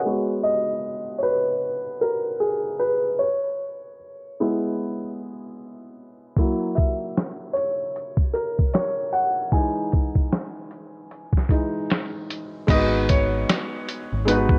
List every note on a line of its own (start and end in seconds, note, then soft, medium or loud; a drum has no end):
0.00 0.29 C#5 medium
0.00 0.29 F#5 medium
0.05 1.20 G#3 medium
0.05 1.20 B3 soft
0.05 1.21 F#4 medium
0.43 1.20 D#5 loud
1.18 1.24 C#5 medium
1.23 1.98 B4 medium
2.01 2.43 A#4 medium
2.40 2.82 G#4 medium
2.80 2.89 B4 medium
3.19 3.95 C#5 medium
4.40 4.96 G#3 medium
4.40 4.97 B3 soft
4.40 4.97 E4 medium
6.36 7.52 F#3 medium
6.36 7.52 A#3 soft
6.36 7.52 E4 medium
6.36 kick medium
6.36 closed hi-hat medium
6.75 7.57 E5 medium
6.75 kick medium
6.75 closed hi-hat medium
7.17 snare loud
7.17 closed hi-hat medium
7.53 8.36 C#5 medium
7.53 closed hi-hat medium
7.96 closed hi-hat medium
8.17 kick medium
8.33 8.75 A#4 medium
8.33 closed hi-hat medium
8.59 kick medium
8.74 9.14 C#5 medium
8.74 snare loud
8.74 closed hi-hat medium
9.13 9.22 F#5 loud
9.13 closed hi-hat medium
9.52 11.49 E3 medium
9.52 11.49 G#3 soft
9.52 11.50 D#4 medium
9.52 10.28 G#5 loud
9.52 kick loud
9.52 closed hi-hat medium
9.92 kick loud
9.92 closed hi-hat medium
10.15 kick medium
10.32 snare loud
10.32 closed hi-hat medium
10.71 closed hi-hat medium
11.11 closed hi-hat medium
11.33 kick medium
11.37 snare soft
11.49 11.86 E3 soft
11.49 11.86 G#3 soft
11.49 11.86 D#4 soft
11.49 kick medium
11.49 closed hi-hat medium
11.90 snare loud
11.90 closed hi-hat medium
12.30 closed hi-hat medium
12.67 13.43 G#1 loud
12.67 13.97 G#3 medium
12.67 13.98 B3 medium
12.67 13.99 D#4 medium
12.67 13.05 D#5 medium
12.67 kick loud
12.67 closed hi-hat medium
12.67 crash loud
12.72 14.00 F#4 medium
12.72 14.01 B4 medium
13.09 14.23 C#5 medium
13.09 kick loud
13.09 closed hi-hat medium
13.49 snare loud
13.49 closed hi-hat medium
13.89 closed hi-hat medium
14.13 14.59 G#1 medium
14.25 14.59 G#3 medium
14.25 14.59 B3 medium
14.25 14.59 D#4 medium
14.25 14.59 B4 medium
14.25 closed hi-hat medium
14.30 14.59 F#4 medium
14.30 14.59 B4 medium
14.49 kick loud